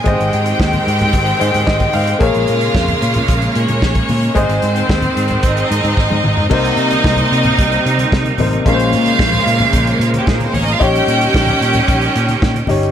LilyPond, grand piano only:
\new Staff \with { instrumentName = "Grand piano" } { \time 4/4 \key bes \dorian \tempo 4 = 112 << { r2 r8 c''8 ees''8 f''8 | r1 | r1 | r1 |
r1 | r1 | } \\ { <aes aes' c'' ees''>2~ <aes aes' c'' ees''>8 <aes aes' ees''>4. | <bes aes' bes' des''>1 | <aes aes' c'' ees''>1 | <c bes ees' c''>2.~ <c bes ees' c''>8 <c bes ees' c''>8 |
<bes, aes des' bes' c''>1 | <ees' g' des''>2.~ <ees' g' des''>8 <ees' g' des''>8 | } >> }